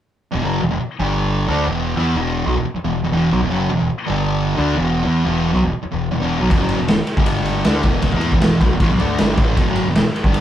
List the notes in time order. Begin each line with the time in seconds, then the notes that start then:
0.32 E1 E2 B2
0.42 F#1 F#2 C#3 F#3
0.61 E1 E2 B2
0.71 E1 E2 B2
0.81 muted distorted electric guitar stroke
0.99 G1 G2 D3 G3
1.48 D2 D3 A3 D4
1.67 E1 E2 B2 E3
1.96 E2 E3 B3 E4
2.15 E1 E2 B2 E3
2.46 B1 B2 F#3
2.55 E1 E2 B2
2.65 muted picked electric bass stroke, muted distorted electric guitar stroke
2.74 muted picked electric bass stroke, muted distorted electric guitar stroke
2.84 E1 E2 B2
3.03 E1 E2 B2
3.12 E1 E2 B2 E3
3.32 B1 B2 F#3
3.41 E1 E2 B2
3.49 F#1 F#2 C#3 F#3
3.69 E1 E2 B2
3.77 E2 B2
3.81 E1
3.90 muted distorted electric guitar stroke, muted picked electric bass stroke
4.06 G1 G2 D3 G3
4.56 D2 D3 A3 D4
4.75 E1 E2 B2 E3
5.04 E2 E3 B3 E4
5.25 E1 E2 B2 E3
5.53 B1 B2 F#3
5.62 E1 E2 B2
5.72 muted distorted electric guitar stroke, muted picked electric bass stroke
5.83 muted distorted electric guitar stroke, muted picked electric bass stroke
5.92 E1 E2 B2
6.12 E1 E2 B2
6.20 E1 E2 B2 E3
6.39 B1 B2 F#3
6.49 E1 E2 B2, kick, ride
6.59 F#1 F#2 C#3 F#3
6.69 ride
6.78 E1 E2 B2
6.88 E1 E2 B2, snare, ride
6.99 muted distorted electric guitar stroke
7.07 ride
7.17 G1 G2 D3 G3, kick
7.26 ride
7.45 ride
7.65 D2 D3 A3 D4, snare, ride
7.83 E1 E2 B2 E3, kick, ride
8.02 kick, ride
8.12 E2 E3 B3 E4, kick
8.21 ride
8.32 E1 E2 B2 E3, kick
8.41 snare, ride
8.60 B1 B2 F#3, kick, ride
8.73 E1 E2 B2
8.80 A1 A2 E3, kick, ride
8.90 B1 B2 F#3
8.99 D2 D3 A3 D4, ride
9.18 G1 G2 D3 G3, snare, ride
9.37 A1 A2, kick, ride
9.42 E3 A3
9.57 E1 E2 B2, kick, ride
9.67 F#1 F#2 C#3 F#3
9.76 ride
9.87 E1 E2 B2
9.94 E1 E2 B2, snare, ride
10.05 muted picked electric bass stroke, muted distorted electric guitar stroke
10.16 ride
10.24 G1 G2 D3 G3, kick
10.34 ride